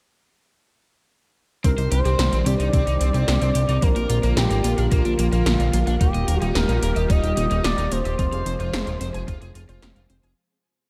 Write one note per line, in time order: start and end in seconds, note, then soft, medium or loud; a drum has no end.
1.64 1.75 C2 loud
1.64 3.80 D#3 medium
1.64 2.43 G3 medium
1.64 3.80 G3 medium
1.64 1.74 C4 loud
1.64 2.43 C4 medium
1.64 1.68 C4 medium
1.64 3.80 C4 medium
1.64 2.43 D4 medium
1.64 2.43 D#4 medium
1.64 2.43 G4 loud
1.64 3.80 G4 medium
1.64 1.91 A#4 loud
1.64 3.80 D5 medium
1.64 kick loud
1.64 closed hi-hat medium
1.78 1.88 C2 medium
1.78 1.88 D#4 medium
1.78 1.88 C5 medium
1.78 closed hi-hat soft
1.92 2.02 C2 loud
1.92 1.97 C4 medium
1.92 1.98 G4 loud
1.92 2.48 C5 loud
1.92 closed hi-hat medium
2.05 2.16 C2 medium
2.05 2.16 C4 loud
2.05 2.18 G4 loud
2.05 closed hi-hat soft
2.19 2.29 C2 loud
2.19 2.29 C4 medium
2.19 2.23 C5 medium
2.19 snare loud
2.19 closed hi-hat medium
2.32 2.43 A#1 medium
2.32 2.39 C4 medium
2.32 2.38 C5 medium
2.32 closed hi-hat soft
2.46 2.56 C2 loud
2.46 3.79 G3 medium
2.46 3.79 C4 medium
2.46 2.52 C4 loud
2.46 3.79 D4 medium
2.46 3.79 D#4 medium
2.46 2.53 G4 medium
2.46 3.79 G4 loud
2.46 3.84 D5 loud
2.46 closed hi-hat medium
2.60 2.70 C2 medium
2.60 2.67 D#4 medium
2.60 2.73 D5 loud
2.60 closed hi-hat soft
2.73 2.84 C2 loud
2.73 2.83 C4 loud
2.73 2.84 C4 loud
2.73 kick loud
2.73 closed hi-hat medium
2.87 2.97 C2 medium
2.87 2.94 D#4 loud
2.87 2.97 D#4 medium
2.87 closed hi-hat soft
3.01 3.11 C2 medium
3.01 3.08 C4 medium
3.01 3.07 C4 medium
3.01 closed hi-hat medium
3.14 3.25 C2 medium
3.14 3.25 C4 medium
3.14 3.27 G4 loud
3.14 closed hi-hat soft
3.28 3.38 C2 loud
3.28 3.38 C4 medium
3.28 3.32 C5 loud
3.28 snare loud
3.28 closed hi-hat medium
3.42 3.52 C2 medium
3.42 3.48 C4 medium
3.42 3.47 C5 medium
3.42 closed hi-hat soft
3.55 3.66 C2 medium
3.55 3.61 C4 loud
3.55 3.59 G4 medium
3.55 closed hi-hat medium
3.69 3.79 C2 medium
3.69 3.76 D#4 medium
3.69 3.82 D5 loud
3.69 closed hi-hat soft
3.82 3.93 A#1 loud
3.82 5.98 D3 medium
3.82 4.61 F3 medium
3.82 5.99 F3 medium
3.82 3.92 A#3 loud
3.82 4.61 A#3 medium
3.82 3.87 A#3 medium
3.82 5.99 A#3 medium
3.82 4.61 D4 medium
3.82 4.61 F4 medium
3.82 10.33 F4 medium
3.82 5.99 A#4 medium
3.82 4.37 A#4 loud
3.82 4.61 C5 medium
3.82 kick loud
3.82 closed hi-hat medium
3.96 4.06 A#1 medium
3.96 4.06 F4 medium
3.96 4.06 A#4 medium
3.96 closed hi-hat soft
4.10 4.20 A#1 medium
4.10 4.16 A#3 medium
4.10 4.17 F4 loud
4.10 closed hi-hat medium
4.23 4.34 A#1 medium
4.23 4.34 A#3 loud
4.23 4.36 A#4 loud
4.23 closed hi-hat soft
4.37 4.47 A#1 loud
4.37 4.47 A#3 medium
4.37 4.93 G4 medium
4.37 4.41 A#4 loud
4.37 snare loud
4.37 closed hi-hat medium
4.51 4.61 G#1 medium
4.51 4.58 A#3 medium
4.51 4.57 D5 medium
4.51 closed hi-hat soft
4.64 4.75 A#1 medium
4.64 4.80 F3 medium
4.64 4.70 A#3 loud
4.64 4.80 A#3 medium
4.64 4.80 D4 medium
4.64 4.80 F4 medium
4.64 4.71 F4 medium
4.64 4.80 A#4 medium
4.64 closed hi-hat medium
4.78 4.88 A#1 medium
4.78 4.85 D4 medium
4.78 4.91 F5 loud
4.78 closed hi-hat soft
4.92 5.02 A#1 loud
4.92 5.01 A#3 loud
4.92 5.02 A#3 loud
4.92 5.19 F4 loud
4.92 kick loud
4.92 closed hi-hat medium
5.05 5.16 A#1 medium
5.05 5.12 D4 loud
5.05 5.15 F4 medium
5.05 closed hi-hat soft
5.19 5.29 A#1 medium
5.19 5.26 A#3 medium
5.19 5.25 A#3 medium
5.19 5.97 F4 loud
5.19 closed hi-hat medium
5.32 5.43 A#1 medium
5.32 5.43 A#3 loud
5.32 5.45 A#4 loud
5.32 closed hi-hat soft
5.46 5.56 A#1 loud
5.46 5.56 A#3 medium
5.46 5.50 A#4 loud
5.46 snare loud
5.46 closed hi-hat medium
5.60 5.70 A#1 medium
5.60 5.67 A#3 medium
5.60 5.66 D5 medium
5.60 closed hi-hat soft
5.73 5.84 A#1 medium
5.73 5.79 A#3 loud
5.73 5.77 F4 medium
5.73 closed hi-hat medium
5.87 5.97 A#1 medium
5.87 5.94 D4 medium
5.87 6.00 F5 loud
5.87 closed hi-hat soft
6.01 6.11 D#1 loud
6.01 8.17 D#3 medium
6.01 6.79 G3 medium
6.01 8.17 G3 medium
6.01 6.79 A#3 medium
6.01 6.10 A#3 loud
6.01 8.17 A#3 medium
6.01 6.05 D#4 medium
6.01 6.79 D#4 medium
6.01 6.79 F4 medium
6.01 6.79 G4 loud
6.01 8.17 G4 medium
6.01 6.52 G4 loud
6.01 kick loud
6.01 closed hi-hat medium
6.14 6.25 D#1 medium
6.14 6.24 F4 medium
6.14 6.25 D#5 medium
6.14 closed hi-hat soft
6.28 6.38 D#1 medium
6.28 6.34 A#3 medium
6.28 6.35 A#4 loud
6.28 closed hi-hat medium
6.42 6.52 D#1 medium
6.42 6.52 D#4 loud
6.42 6.55 G4 loud
6.42 closed hi-hat soft
6.55 6.66 D#1 loud
6.55 6.65 A#3 medium
6.55 7.12 A#4 loud
6.55 6.59 D#5 medium
6.55 snare loud
6.55 closed hi-hat medium
6.69 6.79 A#1 medium
6.69 6.76 D#4 medium
6.69 6.75 A#4 medium
6.69 closed hi-hat soft
6.83 6.93 D#1 loud
6.83 8.16 G3 medium
6.83 6.88 A#3 loud
6.83 8.16 A#3 medium
6.83 8.16 D#4 medium
6.83 8.16 F4 medium
6.83 8.16 G4 loud
6.83 6.89 A#4 medium
6.83 closed hi-hat medium
6.96 7.07 D#1 medium
6.96 7.03 G4 medium
6.96 7.09 D#5 loud
6.96 closed hi-hat soft
7.10 7.20 D#1 loud
7.10 7.20 A#3 loud
7.10 7.20 D#4 loud
7.10 7.64 D#5 loud
7.10 kick loud
7.10 closed hi-hat medium
7.23 7.34 D#1 medium
7.23 7.33 F4 medium
7.23 7.30 G4 loud
7.23 closed hi-hat soft
7.37 7.47 D#1 medium
7.37 7.43 A#3 medium
7.37 7.44 D#4 medium
7.37 closed hi-hat medium
7.51 7.61 D#1 medium
7.51 7.61 D#4 loud
7.51 7.64 G4 loud
7.51 closed hi-hat soft
7.64 7.75 D#1 loud
7.64 7.74 A#3 medium
7.64 7.93 D5 loud
7.64 7.68 D#5 loud
7.64 snare loud
7.64 closed hi-hat medium
7.78 7.88 D#1 medium
7.78 7.85 D#4 medium
7.78 7.84 A#4 medium
7.78 closed hi-hat soft
7.92 8.02 D#1 medium
7.92 7.97 A#3 loud
7.92 7.96 A#4 medium
7.92 9.83 C5 loud
7.92 closed hi-hat medium
8.05 8.16 D#1 medium
8.05 8.12 G4 medium
8.05 8.18 D#5 loud
8.05 closed hi-hat soft
8.19 8.29 F1 loud
8.19 10.35 C3 medium
8.19 8.97 F3 medium
8.19 10.35 F3 medium
8.19 8.97 G#3 medium
8.19 10.35 G#3 medium
8.19 8.97 C4 medium
8.19 8.29 C4 loud
8.19 8.97 F4 medium
8.19 8.23 F4 medium
8.19 10.35 G#4 medium
8.19 8.97 A#4 medium
8.19 kick loud
8.19 closed hi-hat medium
8.33 8.43 F1 medium
8.33 8.42 G#4 medium
8.33 8.43 F5 medium
8.33 closed hi-hat soft
8.46 8.57 F1 medium
8.46 8.52 C4 medium
8.46 8.53 C5 loud
8.46 closed hi-hat medium
8.60 8.70 F1 medium
8.60 8.70 F4 loud
8.60 8.73 C5 loud
8.60 closed hi-hat soft
8.73 8.84 F1 loud
8.73 8.83 C4 medium
8.73 8.78 F5 medium
8.73 snare loud
8.73 closed hi-hat medium
8.87 8.97 D#1 medium
8.87 8.94 F4 medium
8.87 8.93 F5 medium
8.87 closed hi-hat soft
9.01 9.11 F1 loud
9.01 9.17 F3 medium
9.01 9.17 G#3 medium
9.01 9.07 C4 loud
9.01 9.17 C4 medium
9.01 9.17 F4 medium
9.01 9.17 G#4 medium
9.01 9.08 C5 medium
9.01 closed hi-hat medium
9.14 9.25 F1 medium
9.14 9.21 G#4 medium
9.14 9.27 G#5 loud
9.14 closed hi-hat soft
9.28 9.38 F1 loud
9.28 9.38 C4 loud
9.28 9.38 F4 loud
9.28 kick loud
9.28 closed hi-hat medium
9.42 9.52 F1 medium
9.42 9.51 G#4 medium
9.42 9.48 G#4 loud
9.42 closed hi-hat soft
9.55 9.66 F1 medium
9.55 9.61 C4 medium
9.55 9.62 F4 medium
9.55 closed hi-hat medium
9.69 9.79 F1 medium
9.69 10.34 F3 loud
9.69 10.34 G#3 medium
9.69 10.34 C4 medium
9.69 10.34 F4 medium
9.69 9.79 F4 loud
9.69 10.34 G#4 loud
9.69 9.82 C5 loud
9.69 closed hi-hat soft
9.82 9.93 F1 loud
9.82 9.92 C4 medium
9.82 9.87 F5 loud
9.82 snare loud
9.82 closed hi-hat medium
9.96 10.07 F1 medium
9.96 10.03 F4 medium
9.96 10.02 F5 medium
9.96 closed hi-hat soft
10.10 10.20 F1 loud
10.10 10.16 C4 loud
10.10 10.14 C5 medium
10.10 closed hi-hat medium
10.23 10.34 F1 medium
10.23 10.30 G#4 medium
10.23 10.36 G#5 loud
10.23 closed hi-hat soft